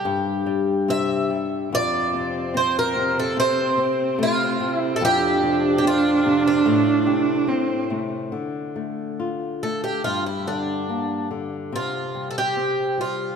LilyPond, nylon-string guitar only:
\new Staff \with { instrumentName = "Nylon-string guitar" } { \clef bass \time 2/4 \key f \major \tempo 4 = 72 g,8 g8 c8 g8 | f,8 c8 c'8 c8 | c8 c'8 a8 c8 | f,8 c8 c'8 c8 |
a,8 c8 c'8 c8 | \key d \minor d8 a8 f'8 a8 | g,8 d8 bes8 d8 | c8 g8 c'8 g8 | }